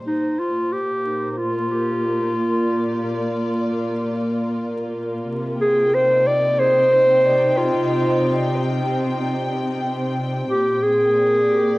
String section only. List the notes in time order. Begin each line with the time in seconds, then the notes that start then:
Already playing: C5
0.07 A#2
0.79 A#3
1.62 F4
1.94 D5
5.29 C3
5.58 G5
5.97 D#4
6.06 C4
10.51 A#2
10.97 A#3
11.16 D5